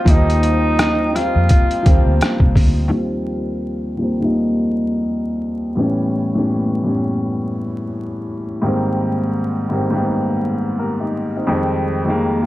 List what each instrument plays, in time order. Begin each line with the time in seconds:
Already playing: upright piano F3 G3 A#3 C4, ambient pad F4 C5 D#5 G5
0.02 upright piano F3, tenor saxophone F4, kick
0.06 fingered electric bass D#2, upright piano G3 A#3 D#4, tenor saxophone D#4, closed hi-hat
0.30 closed hi-hat
0.43 closed hi-hat
0.79 cross-stick, closed hi-hat
1.12 upright piano F3 G3 A#3, tenor saxophone F4, cross-stick, closed hi-hat
1.17 upright piano C4
1.36 fingered electric bass F2
1.49 kick, closed hi-hat
1.71 closed hi-hat
1.83 upright piano F3 G3 A#3, kick, closed hi-hat
1.87 fingered electric bass D#2, upright piano C4
2.06 fingered electric bass D2
2.21 cross-stick, closed hi-hat
2.40 fingered electric bass C2, kick
2.56 fingered electric bass D2, kick, open hi-hat
2.88 upright piano D#2 F3 G3
2.92 upright piano A#3 C4
3.97 upright piano D#2 F3 G3 A#3
4.02 upright piano C4
4.20 upright piano D#2 F3 G3 A#3
4.25 upright piano D#4
5.75 upright piano A2 E3 G3 B3
5.80 upright piano C#4
6.34 upright piano A2 E3 G3 B3
6.39 upright piano C#4
6.83 upright piano A2 E3 G3 B3
6.88 upright piano C#4
8.62 upright piano G#2 D#3 G3 A#3
8.66 upright piano C4
9.69 upright piano G#2 D#3 G3 A#3
9.74 upright piano C4
9.90 upright piano G#2 D#3 G3
9.94 upright piano A#3 B3
10.02 upright piano C4
10.79 upright piano G4 A#4
11.00 upright piano D#4 G4
11.36 upright piano C4 D#4
11.47 upright piano F2 D#3 G3 G#3
11.52 upright piano C4
12.04 upright piano F2 D#3 G3
12.08 upright piano G#3 A#3
12.41 upright piano F4 G#4